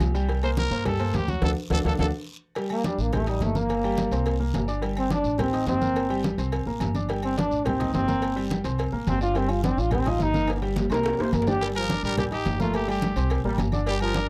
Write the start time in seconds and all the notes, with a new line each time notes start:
Already playing: G4
0.00 C2, cowbell, high conga, low timbale, low agogo, short guiro
0.15 G3 G4 G5, low agogo, short guiro
0.28 G3 G4 G5, cowbell, high conga, low agogo, long guiro
0.43 A#3 A#4 C5, high conga, low agogo
0.57 A#4, cowbell, high conga, low timbale, short guiro
0.71 G2 A#3 A#4 C5, high conga, short guiro
0.85 G3 G4 A4 G5, cowbell, high conga, low conga, low agogo, long guiro
0.99 A#3 A#4 C5, cowbell, high conga, low agogo
1.13 D2 G4, cowbell, high conga, low timbale, short guiro
1.28 F#3 F#4 F#5, high conga, short guiro
1.42 D2 D4 F#4 A4, cowbell, high conga, high timbale, long guiro
1.70 D2 D4 F#4 A4, cowbell, high conga, high timbale, long guiro
1.84 D2 D4 F#4 A4, cowbell, high conga, high timbale, long guiro
1.98 D2 D4 F#4 A4, cowbell, high conga, high timbale, long guiro
2.55 G3 G4 G5, cowbell, high conga, low agogo, long guiro
2.70 A#3, high conga, low agogo
2.84 G3 D4 D5 D6, cowbell, high conga, low timbale, short guiro
2.98 A1 A#3, high conga, short guiro
3.13 A3 G4 G5 G6, cowbell, high conga, low conga, low agogo, long guiro
3.26 G3 D#4 D#5 D#6, cowbell, high conga, low agogo
3.40 G1 A3, cowbell, high conga, low timbale, short guiro
3.55 A#3 A#4 A#5, high conga, short guiro
3.69 cowbell, high conga, low agogo, long guiro
3.84 G3 G4 G5, high conga, low agogo
3.97 cowbell, high conga, low timbale, short guiro
4.11 C2 C4 C5 C6, cowbell, high conga, low agogo, short guiro
4.26 cowbell, high conga, low agogo, long guiro
4.40 A#3 A#4 A#5, high conga
4.54 G1, cowbell, high conga, low timbale, low agogo, short guiro
4.68 D4 D5 D6, low agogo, short guiro
4.82 G3 G4 G5, cowbell, high conga, low agogo, long guiro
4.97 C4, high conga, low agogo
5.10 D4 D5 D6, cowbell, high conga, low timbale, short guiro
5.24 A1, high conga, short guiro
5.38 C4 G4 G5 G6, cowbell, high conga, low conga, low agogo, long guiro
5.53 D#4 D#5 D#6, cowbell, high conga, low agogo
5.67 G1 C4, cowbell, high conga, low timbale, short guiro
5.81 A#3 A#4 A#5, high conga, short guiro
5.96 cowbell, high conga, low agogo, long guiro
6.10 G3 G4 G5, high conga, low agogo
6.23 cowbell, high conga, low timbale, short guiro
6.38 C2 C4 C5 C6, cowbell, high conga, low agogo, short guiro
6.52 cowbell, high conga, low agogo, long guiro
6.66 A1 A#3 A#4 A#5, high conga
6.80 G1, cowbell, high conga, low timbale, low agogo, short guiro
6.95 D4 D5 D6, high conga, low agogo, short guiro
7.09 G3 G4 G5, cowbell, high conga, low agogo, long guiro
7.23 C4, high conga, low agogo
7.37 D4 D5 D6, cowbell, high conga, low timbale, short guiro
7.51 A1, high conga, short guiro
7.65 C4 G4 G5 G6, cowbell, high conga, low conga, low agogo, long guiro
7.79 D#4 D#5 D#6, cowbell, high conga, low conga, low agogo
7.94 G1 C4, cowbell, high conga, low timbale, short guiro
8.07 A#3 A#4 A#5, high conga, short guiro
8.22 cowbell, high conga, low agogo, long guiro
8.36 G3 G4 G5, high conga, low agogo
8.50 cowbell, high conga, low timbale, short guiro
8.64 C2 C4 C5 C6, cowbell, high conga, low agogo, short guiro
8.78 cowbell, high conga, low agogo, long guiro
8.92 A1 A#3 A#4 A#5, high conga
9.07 G1 C4, cowbell, high conga, low timbale, low agogo, short guiro
9.21 D4 F4 D5 D6, low agogo, short guiro
9.35 G3 C4 G4 G5, cowbell, high conga, low agogo, long guiro
9.49 F4, high conga, low agogo
9.63 C4 D4 D5 D6, cowbell, high conga, low timbale, short guiro
9.77 A1 F4, high conga, short guiro
9.91 C4 G4 G5 G6, cowbell, high conga, low conga, low agogo, long guiro
10.05 D#4 F4 D#5 D#6, cowbell, high conga, low conga, low agogo
10.19 G1 D#4, cowbell, high conga, low timbale, short guiro
10.34 A#3 A#4 A#5, high conga, short guiro
10.48 cowbell, high conga, high timbale, low agogo, long guiro
10.57 high timbale
10.62 G3 G4 G5, high conga, low agogo
10.76 cowbell, high conga, low timbale, short guiro
10.90 C2 C4 A#4 C5 C6, cowbell, high bongo, high conga, low agogo, short guiro
10.94 low timbale
11.03 cowbell, high bongo, high conga, low timbale, low agogo, long guiro
11.14 low timbale
11.18 A1 A#3 A#4 C5 A#5, high bongo, high conga
11.24 low timbale
11.33 G1 A#4, cowbell, high conga, low timbale, low agogo, short guiro
11.42 low timbale
11.47 D4 G4 D5 D6, low bongo, high conga, low agogo, short guiro
11.52 low timbale
11.61 G3 G4 G5, cowbell, high conga, low agogo, long guiro
11.75 F3 A#4, high conga, low agogo
11.89 D4 D5 D6, cowbell, high conga, low timbale, short guiro
12.03 A1 G3 A#4, high conga, short guiro
12.18 G4 G5 G6, cowbell, high conga, low conga, low agogo, long guiro
12.31 D#4 G4 D#5 D#6, cowbell, high conga, low agogo
12.46 G1, cowbell, high conga, low timbale, short guiro
12.59 A3 A#3 F4 A#4 A#5, high conga, short guiro
12.74 G4, cowbell, high conga, low agogo, long guiro
12.88 G3 G4 G5, high conga, low agogo
13.01 cowbell, high conga, low timbale, short guiro
13.16 C2 C4 C5 C6, cowbell, high conga, low agogo, short guiro
13.30 cowbell, high conga, low agogo, long guiro
13.44 A1 G3 A#3 A#4 A#5, high conga
13.58 G1, cowbell, high conga, low timbale, low agogo, short guiro
13.72 D3 D4 D5 D6, high conga, low agogo, short guiro
13.86 G3 G4 G5, cowbell, high conga, low agogo, long guiro
14.00 F3 A#4, high conga, low agogo
14.14 D4 D5 D6, cowbell, high conga, low timbale, short guiro